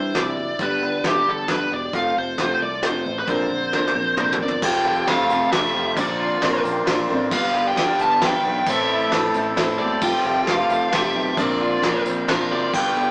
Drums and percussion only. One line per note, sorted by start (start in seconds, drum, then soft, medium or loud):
0.15 snare medium
0.15 closed hi-hat medium
0.59 kick medium
0.59 closed hi-hat medium
1.04 snare medium
1.04 closed hi-hat medium
1.48 snare medium
1.48 closed hi-hat medium
1.93 kick loud
1.93 closed hi-hat medium
2.38 snare medium
2.38 closed hi-hat soft
2.83 snare medium
2.83 closed hi-hat medium
3.27 kick loud
3.27 closed hi-hat medium
3.73 snare medium
3.88 snare medium
4.17 mid tom medium
4.32 mid tom medium
4.48 floor tom medium
4.62 kick loud
4.62 crash loud
4.62 tambourine loud
5.07 snare medium
5.07 ride medium
5.19 tambourine soft
5.30 tambourine loud
5.41 tambourine soft
5.52 snare medium
5.52 ride medium
5.96 kick loud
5.96 ride medium
5.96 tambourine loud
6.42 snare medium
6.42 ride medium
6.54 tambourine soft
6.65 tambourine medium
6.76 tambourine soft
6.87 snare medium
6.87 ride medium
7.31 kick loud
7.31 tambourine loud
7.31 crash loud
7.77 snare medium
7.77 ride medium
7.99 tambourine loud
8.11 tambourine soft
8.21 snare loud
8.21 ride medium
8.66 kick loud
8.66 ride medium
8.66 tambourine loud
8.89 tambourine soft
9.00 tambourine soft
9.11 snare medium
9.11 ride medium
9.34 tambourine loud
9.57 snare medium
9.57 ride medium
9.68 tambourine soft
9.80 tambourine soft
10.01 kick loud
10.01 tambourine loud
10.01 crash loud
10.47 snare medium
10.47 ride medium
10.59 tambourine soft
10.70 tambourine loud
10.92 snare medium
10.92 ride medium
11.37 kick loud
11.37 ride medium
11.37 tambourine loud
11.83 snare medium
11.83 ride medium
11.95 tambourine soft
12.06 tambourine loud
12.17 tambourine soft
12.28 snare loud
12.28 ride medium
12.74 kick loud
12.74 crash loud
12.74 tambourine loud